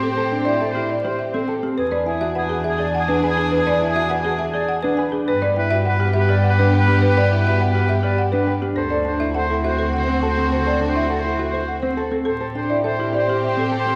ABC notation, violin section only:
X:1
M:3/4
L:1/16
Q:1/4=103
K:Ador
V:1 name="Violin section"
[CG]8- [CG]3 z | [D^G]12- | [D^G]8- [DG]3 z | [B,G]12- |
[B,G]8- [B,G]3 z | [CF]12- | [CF]8- [CF]3 z | [CG]12 |]